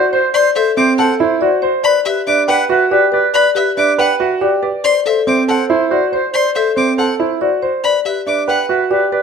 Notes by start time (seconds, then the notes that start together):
Already playing: F#4 D5
0.12 C5
0.34 C5 D5 C6
0.56 A4 C5 E5
0.77 C4 C5 E5 D6
0.98 A4 C5 F#5 A5
1.20 E4 C5 E5
1.41 F#4 C5 D5
1.62 C5
1.83 B4 D5 B5
2.05 G4 B4 E5
2.27 D4 B4 E5 D6
2.48 B4 F#5 G5
2.69 F#4 B4 E5
2.91 G4 B4 D5
3.12 B4 D5
3.33 B4 D5 B5
3.55 G4 B4 E5
3.77 D4 B4 E5 D6
3.98 B4 F#5 G5
4.20 F#4 B4 E5
4.41 G4 B4 D5
4.62 B4 D5
4.84 C5 D5 C6
5.05 A4 C5 E5
5.27 C4 C5 E5 D6
5.47 A4 C5 F#5 A5
5.69 E4 C5 E5
5.90 F#4 C5 D5
6.12 C5
6.34 C5 D5 C6
6.54 A4 C5 E5
6.75 C4 C5 E5 D6
6.97 A4 C5 F#5 A5
7.19 E4 C5 E5
7.41 F#4 C5 D5
7.62 C5
7.84 B4 D5 B5
8.05 G4 B4 E5
8.27 D4 B4 E5 D6
8.47 B4 F#5 G5
8.69 F#4 B4 E5
8.90 G4 B4 D5
9.12 B4 D5